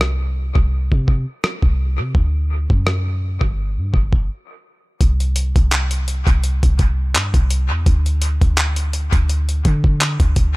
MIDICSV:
0, 0, Header, 1, 3, 480
1, 0, Start_track
1, 0, Tempo, 714286
1, 1445, Time_signature, 4, 2, 24, 8
1, 7100, End_track
2, 0, Start_track
2, 0, Title_t, "808-style bass"
2, 0, Program_c, 0, 38
2, 0, Note_on_c, 0, 36, 96
2, 357, Note_off_c, 0, 36, 0
2, 374, Note_on_c, 0, 36, 92
2, 605, Note_off_c, 0, 36, 0
2, 618, Note_on_c, 0, 48, 97
2, 847, Note_off_c, 0, 48, 0
2, 1093, Note_on_c, 0, 36, 111
2, 1336, Note_on_c, 0, 48, 98
2, 1346, Note_off_c, 0, 36, 0
2, 1441, Note_off_c, 0, 48, 0
2, 1445, Note_on_c, 0, 38, 110
2, 1800, Note_off_c, 0, 38, 0
2, 1816, Note_on_c, 0, 42, 92
2, 2277, Note_off_c, 0, 42, 0
2, 2295, Note_on_c, 0, 31, 105
2, 2536, Note_on_c, 0, 43, 101
2, 2546, Note_off_c, 0, 31, 0
2, 2641, Note_off_c, 0, 43, 0
2, 2647, Note_on_c, 0, 31, 106
2, 2886, Note_off_c, 0, 31, 0
2, 3366, Note_on_c, 0, 36, 108
2, 3721, Note_off_c, 0, 36, 0
2, 3737, Note_on_c, 0, 36, 95
2, 4197, Note_off_c, 0, 36, 0
2, 4214, Note_on_c, 0, 36, 96
2, 4445, Note_off_c, 0, 36, 0
2, 4458, Note_on_c, 0, 36, 108
2, 4807, Note_on_c, 0, 43, 97
2, 4817, Note_off_c, 0, 36, 0
2, 4929, Note_off_c, 0, 43, 0
2, 4934, Note_on_c, 0, 36, 109
2, 5176, Note_on_c, 0, 40, 98
2, 5186, Note_off_c, 0, 36, 0
2, 5281, Note_off_c, 0, 40, 0
2, 5286, Note_on_c, 0, 38, 115
2, 5641, Note_off_c, 0, 38, 0
2, 5657, Note_on_c, 0, 38, 89
2, 6117, Note_off_c, 0, 38, 0
2, 6134, Note_on_c, 0, 38, 103
2, 6471, Note_off_c, 0, 38, 0
2, 6488, Note_on_c, 0, 50, 100
2, 6842, Note_off_c, 0, 50, 0
2, 6855, Note_on_c, 0, 38, 106
2, 7100, Note_off_c, 0, 38, 0
2, 7100, End_track
3, 0, Start_track
3, 0, Title_t, "Drums"
3, 6, Note_on_c, 9, 37, 102
3, 73, Note_off_c, 9, 37, 0
3, 373, Note_on_c, 9, 36, 92
3, 440, Note_off_c, 9, 36, 0
3, 616, Note_on_c, 9, 36, 83
3, 683, Note_off_c, 9, 36, 0
3, 725, Note_on_c, 9, 36, 82
3, 792, Note_off_c, 9, 36, 0
3, 967, Note_on_c, 9, 37, 114
3, 1034, Note_off_c, 9, 37, 0
3, 1092, Note_on_c, 9, 36, 86
3, 1159, Note_off_c, 9, 36, 0
3, 1443, Note_on_c, 9, 36, 97
3, 1510, Note_off_c, 9, 36, 0
3, 1814, Note_on_c, 9, 36, 93
3, 1882, Note_off_c, 9, 36, 0
3, 1926, Note_on_c, 9, 37, 99
3, 1993, Note_off_c, 9, 37, 0
3, 2292, Note_on_c, 9, 36, 84
3, 2360, Note_off_c, 9, 36, 0
3, 2646, Note_on_c, 9, 36, 88
3, 2713, Note_off_c, 9, 36, 0
3, 2773, Note_on_c, 9, 36, 100
3, 2840, Note_off_c, 9, 36, 0
3, 3364, Note_on_c, 9, 36, 91
3, 3365, Note_on_c, 9, 42, 71
3, 3431, Note_off_c, 9, 36, 0
3, 3432, Note_off_c, 9, 42, 0
3, 3496, Note_on_c, 9, 42, 47
3, 3564, Note_off_c, 9, 42, 0
3, 3600, Note_on_c, 9, 42, 75
3, 3667, Note_off_c, 9, 42, 0
3, 3735, Note_on_c, 9, 36, 95
3, 3736, Note_on_c, 9, 42, 51
3, 3802, Note_off_c, 9, 36, 0
3, 3803, Note_off_c, 9, 42, 0
3, 3839, Note_on_c, 9, 42, 63
3, 3845, Note_on_c, 9, 39, 104
3, 3906, Note_off_c, 9, 42, 0
3, 3912, Note_off_c, 9, 39, 0
3, 3971, Note_on_c, 9, 42, 60
3, 4038, Note_off_c, 9, 42, 0
3, 4085, Note_on_c, 9, 42, 70
3, 4152, Note_off_c, 9, 42, 0
3, 4212, Note_on_c, 9, 36, 96
3, 4215, Note_on_c, 9, 42, 53
3, 4279, Note_off_c, 9, 36, 0
3, 4282, Note_off_c, 9, 42, 0
3, 4325, Note_on_c, 9, 42, 71
3, 4392, Note_off_c, 9, 42, 0
3, 4455, Note_on_c, 9, 36, 86
3, 4455, Note_on_c, 9, 42, 56
3, 4523, Note_off_c, 9, 36, 0
3, 4523, Note_off_c, 9, 42, 0
3, 4563, Note_on_c, 9, 42, 54
3, 4565, Note_on_c, 9, 36, 89
3, 4630, Note_off_c, 9, 42, 0
3, 4632, Note_off_c, 9, 36, 0
3, 4806, Note_on_c, 9, 42, 74
3, 4807, Note_on_c, 9, 39, 120
3, 4873, Note_off_c, 9, 42, 0
3, 4874, Note_off_c, 9, 39, 0
3, 4932, Note_on_c, 9, 36, 86
3, 4933, Note_on_c, 9, 42, 66
3, 4999, Note_off_c, 9, 36, 0
3, 5001, Note_off_c, 9, 42, 0
3, 5043, Note_on_c, 9, 42, 75
3, 5111, Note_off_c, 9, 42, 0
3, 5284, Note_on_c, 9, 36, 100
3, 5285, Note_on_c, 9, 42, 68
3, 5351, Note_off_c, 9, 36, 0
3, 5352, Note_off_c, 9, 42, 0
3, 5417, Note_on_c, 9, 42, 50
3, 5484, Note_off_c, 9, 42, 0
3, 5521, Note_on_c, 9, 42, 74
3, 5588, Note_off_c, 9, 42, 0
3, 5655, Note_on_c, 9, 36, 99
3, 5656, Note_on_c, 9, 42, 56
3, 5722, Note_off_c, 9, 36, 0
3, 5723, Note_off_c, 9, 42, 0
3, 5758, Note_on_c, 9, 42, 66
3, 5765, Note_on_c, 9, 39, 105
3, 5826, Note_off_c, 9, 42, 0
3, 5832, Note_off_c, 9, 39, 0
3, 5889, Note_on_c, 9, 42, 60
3, 5956, Note_off_c, 9, 42, 0
3, 6004, Note_on_c, 9, 42, 73
3, 6071, Note_off_c, 9, 42, 0
3, 6132, Note_on_c, 9, 36, 93
3, 6134, Note_on_c, 9, 42, 51
3, 6199, Note_off_c, 9, 36, 0
3, 6201, Note_off_c, 9, 42, 0
3, 6246, Note_on_c, 9, 42, 70
3, 6313, Note_off_c, 9, 42, 0
3, 6375, Note_on_c, 9, 42, 55
3, 6442, Note_off_c, 9, 42, 0
3, 6484, Note_on_c, 9, 42, 51
3, 6486, Note_on_c, 9, 36, 94
3, 6552, Note_off_c, 9, 42, 0
3, 6553, Note_off_c, 9, 36, 0
3, 6613, Note_on_c, 9, 36, 100
3, 6680, Note_off_c, 9, 36, 0
3, 6726, Note_on_c, 9, 42, 72
3, 6727, Note_on_c, 9, 39, 113
3, 6793, Note_off_c, 9, 42, 0
3, 6794, Note_off_c, 9, 39, 0
3, 6853, Note_on_c, 9, 36, 89
3, 6854, Note_on_c, 9, 42, 66
3, 6920, Note_off_c, 9, 36, 0
3, 6921, Note_off_c, 9, 42, 0
3, 6963, Note_on_c, 9, 42, 78
3, 6965, Note_on_c, 9, 36, 87
3, 7030, Note_off_c, 9, 42, 0
3, 7032, Note_off_c, 9, 36, 0
3, 7100, End_track
0, 0, End_of_file